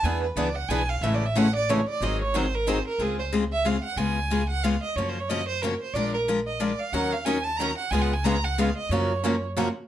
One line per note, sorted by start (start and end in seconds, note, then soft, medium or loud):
0.03 0.30 E2 medium
0.03 0.24 E3 medium
0.03 0.24 B3 medium
0.03 0.25 D4 medium
0.03 0.25 G#4 medium
0.03 0.25 B4 medium
0.03 0.23 G#5 medium
0.24 0.39 B4 soft
0.36 0.64 C#2 medium
0.36 0.48 E3 medium
0.36 0.48 B3 medium
0.36 0.48 D4 medium
0.36 0.48 G#4 medium
0.36 0.48 B4 medium
0.36 0.57 D5 medium
0.55 0.70 F#5 medium
0.69 0.97 B1 medium
0.69 0.81 E3 medium
0.69 0.81 B3 medium
0.69 0.81 D4 medium
0.69 0.81 G#4 loud
0.69 0.81 B4 medium
0.69 0.91 G#5 medium
0.89 1.04 F5 medium
1.01 1.80 A1 loud
1.01 1.23 C#3 medium
1.01 1.23 E3 medium
1.01 1.23 G#3 medium
1.01 1.23 A3 medium
1.01 1.23 C#4 medium
1.01 1.23 E4 medium
1.01 1.23 G#4 medium
1.01 1.23 A4 medium
1.01 1.16 E5 medium
1.15 1.27 D5 medium
1.26 1.39 E5 medium
1.35 1.46 C#3 loud
1.35 1.46 E3 medium
1.35 1.47 G#3 medium
1.35 1.47 A3 medium
1.35 1.47 C#4 medium
1.35 1.47 E4 medium
1.35 1.47 G#4 loud
1.35 1.47 A4 medium
1.35 1.55 F#5 loud
1.56 1.72 D5 loud
1.69 1.79 C#3 medium
1.69 1.79 E3 medium
1.69 1.80 G#3 medium
1.69 1.80 A3 medium
1.69 1.80 C#4 medium
1.69 1.80 E4 medium
1.69 1.80 G#4 loud
1.69 1.80 A4 loud
1.69 1.88 C#5 medium
1.89 2.05 D5 loud
2.01 2.79 G#1 medium
2.01 2.22 D#3 medium
2.01 2.22 F#3 medium
2.01 2.22 C4 medium
2.01 2.22 D#4 medium
2.01 2.22 G#4 medium
2.01 2.21 D#5 medium
2.22 2.38 C#5 medium
2.35 2.45 D#3 medium
2.35 2.45 F#3 medium
2.35 2.45 C4 medium
2.35 2.45 D#4 medium
2.35 2.45 G#4 loud
2.35 2.56 C5 medium
2.54 2.70 A#4 medium
2.67 2.77 D#3 medium
2.67 2.78 F#3 medium
2.67 2.78 C4 medium
2.67 2.78 D#4 medium
2.67 2.78 G#4 medium
2.67 2.87 C5 medium
2.88 3.04 A#4 medium
2.98 3.78 C#2 medium
2.98 3.19 C#3 medium
2.98 3.19 G#3 medium
2.98 3.19 C4 medium
2.98 3.20 F4 medium
2.98 3.20 G#4 medium
2.98 3.18 G#4 medium
3.19 3.27 C5 medium
3.33 3.43 C#3 medium
3.33 3.43 G#3 medium
3.33 3.43 C4 medium
3.33 3.43 F4 medium
3.33 3.44 G#4 loud
3.52 3.68 E5 medium
3.65 3.75 C#3 medium
3.65 3.76 G#3 medium
3.65 3.76 C4 medium
3.65 3.76 F4 medium
3.65 3.76 G#4 medium
3.65 3.83 F5 medium
3.84 3.99 F#5 medium
3.96 4.76 C#2 medium
3.96 4.17 C#3 medium
3.96 4.18 G#3 medium
3.96 4.18 B3 medium
3.96 4.18 F4 medium
3.96 4.18 G#4 medium
3.96 4.49 G#5 medium
4.30 4.41 C#3 medium
4.30 4.42 G#3 medium
4.30 4.42 B3 medium
4.30 4.42 F4 medium
4.30 4.42 G#4 medium
4.50 4.65 F#5 loud
4.64 4.74 C#3 medium
4.64 4.74 G#3 medium
4.64 4.75 B3 medium
4.64 4.75 F4 medium
4.64 4.75 G#4 medium
4.64 4.83 F5 medium
4.83 4.98 D#5 medium
4.96 5.75 F#2 medium
4.96 5.17 C#3 medium
4.96 5.17 F3 medium
4.96 5.17 A#3 medium
4.96 5.17 C#4 medium
4.96 5.17 F#4 medium
4.96 5.10 C#5 medium
5.09 5.21 C5 medium
5.20 5.31 C#5 medium
5.29 5.40 C#3 medium
5.29 5.40 F3 medium
5.29 5.40 A#3 medium
5.29 5.41 C#4 loud
5.29 5.41 F#4 medium
5.29 5.48 D#5 medium
5.48 5.63 C5 loud
5.62 5.73 C#3 medium
5.62 5.73 F3 medium
5.62 5.74 A#3 medium
5.62 5.74 C#4 medium
5.62 5.74 F#4 loud
5.62 5.81 A#4 medium
5.82 5.95 C5 medium
5.94 6.73 A#1 medium
5.94 6.15 F3 medium
5.94 6.15 G#3 medium
5.94 6.15 D4 medium
5.94 6.15 F4 medium
5.94 6.16 A#4 medium
5.94 6.13 D5 medium
6.14 6.22 A#4 medium
6.28 6.39 F3 medium
6.28 6.39 G#3 medium
6.28 6.39 D4 medium
6.28 6.39 F4 medium
6.28 6.39 A#4 medium
6.47 6.62 D#5 medium
6.60 6.71 F3 medium
6.60 6.71 G#3 medium
6.60 6.71 D4 medium
6.60 6.71 F4 medium
6.60 6.72 A#4 medium
6.60 6.81 D5 medium
6.80 6.95 F5 medium
6.92 7.72 D#2 medium
6.92 7.13 D#3 medium
6.92 7.13 F#3 medium
6.92 7.14 C#4 medium
6.92 7.13 D#4 medium
6.92 7.14 A#4 medium
6.92 7.14 F#5 medium
7.12 7.27 F5 medium
7.25 7.37 D#3 medium
7.25 7.37 F#3 medium
7.25 7.37 C#4 medium
7.25 7.37 D#4 medium
7.25 7.37 A#4 loud
7.25 7.45 G#5 medium
7.44 7.58 A5 loud
7.57 7.70 D#3 medium
7.57 7.70 F#3 medium
7.57 7.77 A#5 loud
7.61 7.71 C#4 medium
7.61 7.71 D#4 medium
7.61 7.71 A#4 medium
7.78 7.92 F#5 medium
7.91 8.70 C#2 medium
7.91 8.12 C#3 medium
7.91 8.12 G#3 medium
7.91 8.12 B3 medium
7.91 8.13 F4 medium
7.91 8.13 G#4 medium
7.91 8.03 G#5 loud
8.02 8.15 F#5 medium
8.13 8.26 G#5 medium
8.24 8.35 C#3 medium
8.24 8.36 G#3 medium
8.24 8.36 B3 medium
8.24 8.36 F4 medium
8.24 8.36 G#4 loud
8.24 8.46 A#5 loud
8.44 8.61 F#5 medium
8.58 8.69 C#3 medium
8.58 8.69 G#3 medium
8.58 8.69 B3 medium
8.58 8.69 F4 medium
8.58 8.69 G#4 medium
8.58 8.77 F5 medium
8.78 8.93 D#5 medium
8.89 9.69 F#2 medium
8.89 9.11 C#3 medium
8.89 9.11 F3 medium
8.89 9.11 F#3 medium
8.89 9.11 A#3 medium
8.89 9.12 C#4 medium
8.89 9.11 F4 medium
8.89 9.12 F#4 medium
8.89 9.12 A#4 medium
8.89 9.43 C#5 medium
9.24 9.35 C#3 medium
9.24 9.35 F3 medium
9.24 9.34 F#3 medium
9.24 9.35 A#3 medium
9.24 9.35 C#4 medium
9.24 9.34 F4 loud
9.24 9.35 F#4 medium
9.24 9.35 A#4 loud
9.57 9.67 C#3 medium
9.57 9.67 F3 medium
9.57 9.67 F#3 medium
9.57 9.67 A#3 medium
9.57 9.68 C#4 loud
9.57 9.68 F4 medium
9.57 9.68 F#4 loud
9.57 9.68 A#4 medium